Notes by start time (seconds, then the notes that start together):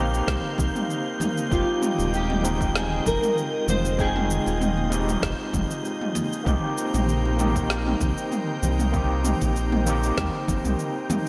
Already playing: A#1 A#3 C4 D#4 A#4 C5 F5 G6
0.00 G4
0.14 shaker
0.27 C2, kick, snare, mid tom, shaker
0.58 C2, kick, low conga, shaker
0.76 mid tom, shaker
0.90 shaker
1.20 D#4, mid tom, high conga, low conga, shaker
1.38 shaker
1.49 F1 G#3 C4 D#4 F4 D#5 G5, kick, shaker
1.53 G4
1.82 mid tom, shaker
1.98 D#1, muted conga, shaker
2.14 G4, shaker
2.30 mid tom, high conga
2.42 G#3 C4 D#4, muted conga, shaker
2.47 G5
2.61 kick, shaker
2.75 G#4, snare, mid tom, shaker
3.06 F1 A#4, kick, low conga, shaker
3.23 mid tom, shaker
3.38 shaker
3.68 F1 C5, mid tom, low conga, shaker
3.85 shaker
3.97 G#3 C4 D#4 G#4 G5, kick, shaker
4.16 mid tom
4.30 shaker
4.46 D#1, muted conga, shaker
4.61 mid tom, shaker
4.77 high conga
4.90 G#3 C4 D#4 G4, muted conga, shaker
5.09 mid tom, shaker
5.22 F1, kick, snare, shaker
5.53 F1, kick, mid tom, low conga, shaker
5.71 shaker
5.85 shaker
6.01 mid tom
6.15 muted conga, high conga, low conga, shaker
6.33 shaker
6.44 C2 A#3 C4 D#4 A#4 C5 G5, kick, mid tom, shaker
6.48 G4
6.78 shaker
6.94 A#1, mid tom, muted conga, shaker
7.09 shaker
7.25 high conga
7.37 A#3 C4 D#4, mid tom, muted conga, shaker
7.41 G4
7.56 kick, shaker
7.70 snare, shaker
7.86 mid tom
8.01 C2, kick, low conga, shaker
8.17 shaker
8.32 mid tom, shaker
8.63 C2, low conga, shaker
8.79 mid tom, shaker
8.92 A#3 C4 D#4, kick, shaker
8.96 G4
9.24 mid tom, shaker
9.41 A#1, kick, muted conga, shaker
9.56 shaker
9.72 mid tom, high conga
9.85 A#3 C4 D#4, muted conga, shaker
9.90 G4
10.03 shaker
10.17 D#2, kick, snare, mid tom, shaker
10.48 G1, kick, low conga, shaker
10.65 C2, mid tom, shaker
10.79 shaker
11.10 mid tom, muted conga, high conga, low conga, shaker